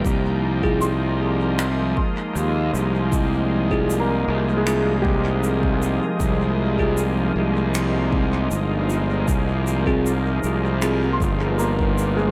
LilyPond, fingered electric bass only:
\new Staff \with { instrumentName = "Fingered electric bass" } { \clef bass \time 4/4 \key f \dorian \tempo 4 = 78 c,2~ c,8 r8 ees,8 c,8~ | c,4. c,2 r8 | c,4. c,4. g,,4 | c,4. c,4 g,,4. | }